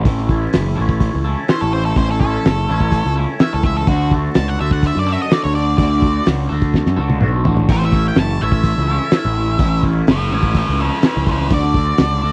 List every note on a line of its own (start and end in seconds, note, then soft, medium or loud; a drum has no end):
0.04 0.46 A1 loud
0.04 1.47 A2 medium
0.04 1.48 E3 medium
0.04 0.31 A3 medium
0.04 0.31 C#4 medium
0.04 0.29 E4 medium
0.04 0.28 A4 medium
0.04 kick loud
0.04 open hi-hat medium
0.18 snare soft
0.28 0.78 A3 medium
0.28 0.77 C#4 medium
0.28 0.76 E4 medium
0.28 0.75 A4 medium
0.28 kick medium
0.53 0.74 F#1 loud
0.53 snare loud
0.53 open hi-hat medium
0.75 1.09 A1 medium
0.75 1.27 A3 soft
0.75 1.26 C#4 medium
0.75 1.24 E4 medium
0.75 1.24 A4 medium
0.89 kick medium
1.00 kick medium
1.00 open hi-hat medium
1.15 1.34 C#2 medium
1.24 1.48 A3 medium
1.24 1.48 C#4 medium
1.24 1.49 E4 medium
1.24 1.50 A4 medium
1.48 1.95 A2 loud
1.48 1.96 E3 medium
1.48 1.75 A3 medium
1.48 1.73 C#4 medium
1.48 1.73 E4 medium
1.48 1.73 A4 loud
1.48 1.61 C5 medium
1.48 snare loud
1.48 open hi-hat medium
1.61 1.92 A1 medium
1.61 1.73 A4 medium
1.73 1.98 A3 medium
1.73 1.97 C#4 medium
1.73 1.98 E4 medium
1.73 2.00 A4 medium
1.73 1.85 C5 medium
1.86 1.97 A4 medium
1.96 2.37 A1 loud
1.96 2.45 A2 medium
1.96 2.45 E3 medium
1.96 2.24 A3 medium
1.96 2.22 C#4 medium
1.96 2.22 E4 medium
1.96 2.21 A4 medium
1.96 2.09 C5 medium
1.96 kick loud
1.96 open hi-hat medium
2.09 2.19 A4 medium
2.09 snare soft
2.20 2.70 C#4 medium
2.20 2.68 E4 medium
2.20 3.14 A4 loud
2.20 2.68 A4 medium
2.20 kick medium
2.25 2.71 A3 medium
2.45 2.66 F#1 medium
2.45 snare loud
2.45 open hi-hat medium
2.69 2.99 A1 medium
2.69 3.18 A3 medium
2.69 3.17 C#4 medium
2.69 3.16 E4 medium
2.69 3.15 A4 medium
2.80 kick medium
2.92 kick medium
2.92 open hi-hat soft
3.05 3.25 C#2 medium
3.16 3.40 A3 medium
3.16 3.41 C#4 medium
3.16 3.41 E4 medium
3.16 3.42 A4 medium
3.39 3.86 A2 medium
3.39 3.87 E3 loud
3.39 3.67 A3 loud
3.39 3.65 C#4 medium
3.39 3.64 E4 medium
3.39 3.63 A4 loud
3.39 3.52 E5 medium
3.39 snare loud
3.39 open hi-hat medium
3.53 3.83 C#2 medium
3.53 3.65 A4 medium
3.63 3.88 A3 medium
3.63 3.88 C#4 medium
3.63 3.87 E4 medium
3.63 3.91 A4 medium
3.63 3.76 E5 medium
3.63 kick medium
3.77 3.88 A4 medium
3.87 4.28 D2 loud
3.87 5.29 D3 medium
3.87 5.31 A3 medium
3.87 4.15 D4 medium
3.87 4.11 F#4 loud
3.87 4.14 F#4 medium
3.87 kick loud
3.87 open hi-hat medium
3.92 4.12 A4 loud
4.11 4.60 F#4 medium
4.11 4.58 A4 medium
4.11 kick medium
4.16 4.62 D4 medium
4.34 4.57 C#2 medium
4.34 4.48 A5 loud
4.34 snare loud
4.34 open hi-hat medium
4.48 4.60 F#5 medium
4.59 4.90 D2 loud
4.59 5.09 D4 medium
4.59 5.07 F#4 medium
4.59 5.06 A4 medium
4.59 4.72 E5 medium
4.71 4.84 F#5 medium
4.71 kick medium
4.83 kick medium
4.83 open hi-hat medium
4.87 4.97 E5 loud
4.96 5.16 F#2 medium
4.96 5.12 D5 medium
5.07 5.30 D4 medium
5.07 5.31 F#4 medium
5.07 5.33 A4 medium
5.12 5.22 E5 medium
5.22 5.32 D#5 medium
5.30 5.78 D3 medium
5.30 5.80 A3 medium
5.30 5.57 D4 loud
5.30 5.55 F#4 medium
5.30 5.54 A4 medium
5.30 5.43 D5 medium
5.30 snare loud
5.30 open hi-hat medium
5.44 5.74 D2 medium
5.44 5.55 C#5 medium
5.55 5.79 D4 medium
5.55 5.80 F#4 medium
5.55 5.82 A4 medium
5.55 5.77 D5 medium
5.78 6.19 D2 loud
5.78 6.27 D3 loud
5.78 7.21 A3 medium
5.78 6.06 D4 medium
5.78 6.04 F#4 loud
5.78 6.25 D5 loud
5.78 kick loud
5.78 open hi-hat medium
5.82 6.03 A4 medium
6.02 6.50 F#4 medium
6.02 6.49 A4 medium
6.02 kick medium
6.07 6.52 D4 medium
6.26 6.47 C#2 medium
6.26 snare loud
6.26 open hi-hat medium
6.49 6.81 D2 medium
6.49 6.99 D4 medium
6.49 6.98 F#4 medium
6.49 6.96 A4 medium
6.62 kick medium
6.74 kick medium
6.74 snare medium
6.86 6.97 F#2 medium
6.86 snare soft
6.96 7.20 C#2 medium
6.96 7.22 F#4 medium
6.96 7.23 A4 medium
7.00 7.21 D4 medium
7.10 high tom medium
7.20 7.44 B1 medium
7.20 7.68 D3 medium
7.20 7.69 A3 medium
7.20 7.46 D4 loud
7.20 7.45 F#4 medium
7.20 7.43 A4 loud
7.20 mid tom medium
7.44 7.68 A1 medium
7.44 7.69 D4 medium
7.44 7.69 F#4 medium
7.44 7.71 A4 medium
7.44 floor tom loud
7.57 floor tom medium
7.69 8.10 A1 medium
7.69 9.12 A2 medium
7.69 9.13 E3 medium
7.69 7.97 A3 medium
7.69 7.95 C#4 medium
7.69 7.94 E4 medium
7.69 7.92 A4 medium
7.69 7.83 C5 medium
7.69 kick loud
7.69 open hi-hat medium
7.69 crash medium
7.82 8.07 E5 medium
7.82 snare soft
7.92 8.42 C#4 medium
7.92 8.41 E4 medium
7.92 8.41 A4 medium
7.92 kick medium
7.97 8.43 A3 medium
8.08 8.19 G5 loud
8.15 8.37 F#1 medium
8.15 8.42 A5 loud
8.15 snare loud
8.15 open hi-hat medium
8.41 8.72 A1 loud
8.41 8.91 A3 medium
8.41 8.89 C#4 medium
8.41 8.89 E4 medium
8.41 8.88 A4 medium
8.41 9.81 E5 loud
8.52 kick medium
8.63 kick medium
8.63 open hi-hat medium
8.78 8.98 C#2 medium
8.88 9.13 A3 medium
8.88 9.14 C#4 medium
8.88 9.15 E4 medium
8.88 9.16 A4 medium
9.11 9.58 A2 medium
9.11 9.59 E3 medium
9.11 9.37 A3 loud
9.11 snare loud
9.11 open hi-hat medium
9.15 9.36 C#4 medium
9.15 9.35 E4 loud
9.15 9.34 A4 loud
9.25 9.55 A1 medium
9.34 9.60 A3 medium
9.34 9.60 C#4 medium
9.34 9.61 E4 medium
9.34 9.62 A4 medium
9.59 10.00 A1 loud
9.59 10.08 A2 medium
9.59 10.08 E3 medium
9.59 9.85 A3 medium
9.59 9.83 C#4 medium
9.59 9.83 E4 medium
9.59 9.82 A4 medium
9.59 kick loud
9.59 open hi-hat medium
9.82 10.33 A3 medium
9.82 10.32 C#4 medium
9.82 10.31 E4 medium
9.82 10.30 A4 medium
9.82 kick medium
10.07 10.29 F#1 medium
10.07 10.32 C#5 medium
10.07 snare loud
10.07 open hi-hat medium
10.11 10.33 E5 loud
10.31 10.63 A1 loud
10.31 10.82 A3 medium
10.31 10.80 C#4 medium
10.31 10.80 E4 medium
10.31 10.79 A4 medium
10.31 10.56 C#5 medium
10.31 10.57 E5 loud
10.43 kick medium
10.55 10.80 C#5 medium
10.55 kick loud
10.55 open hi-hat medium
10.59 10.81 E5 loud
10.69 10.89 C#2 medium
10.79 11.04 A3 medium
10.79 11.04 C#4 medium
10.79 11.05 E4 medium
10.79 11.06 A4 medium
10.79 11.03 A4 medium
10.79 11.05 C5 medium
11.02 11.50 A2 loud
11.02 11.50 E3 medium
11.02 11.30 A3 medium
11.02 11.28 C#4 medium
11.02 11.26 E4 medium
11.02 11.27 A4 medium
11.02 11.28 C5 medium
11.02 snare loud
11.02 open hi-hat medium
11.06 11.26 A4 loud
11.17 11.47 C#2 medium
11.26 11.50 A3 medium
11.26 11.51 C#4 medium
11.26 11.51 E4 medium
11.26 11.53 A4 medium
11.26 kick medium
11.31 11.52 A4 medium
11.31 11.53 C5 medium
11.50 11.91 D2 loud
11.50 12.32 D3 medium
11.50 12.32 A3 medium
11.50 11.77 D4 medium
11.50 11.75 F#4 loud
11.50 11.74 A4 medium
11.50 12.32 D5 loud
11.50 kick loud
11.50 open hi-hat medium
11.63 snare soft
11.74 12.25 D4 medium
11.74 12.24 F#4 medium
11.74 12.22 A4 medium
11.74 kick medium
11.97 12.20 C#2 loud
11.97 snare loud
11.97 open hi-hat medium
12.22 12.32 D2 medium
12.22 12.32 D4 medium
12.22 12.32 F#4 medium
12.22 12.32 A4 medium